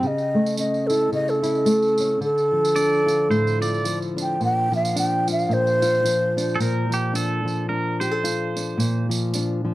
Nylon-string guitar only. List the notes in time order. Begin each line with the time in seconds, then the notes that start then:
0.03 C#3
0.35 A3
0.58 C#4
0.90 E4
1.12 C#3
1.43 E4
1.66 A3
1.99 C#4
2.21 D3
2.52 F3
2.76 D4
3.06 F4
3.29 A2
3.62 F4
3.84 F3
4.17 D4
4.40 A#2
4.72 F3
4.96 D4
5.28 F4
5.49 A#2
5.82 F4
6.05 F3
6.37 D4
6.59 A#2
6.90 F3
7.13 D4
7.45 F3
7.69 D4
8.01 G4
8.11 A4
8.24 F4
8.56 D4
8.78 A#2
9.09 F3
9.35 D4
9.64 F3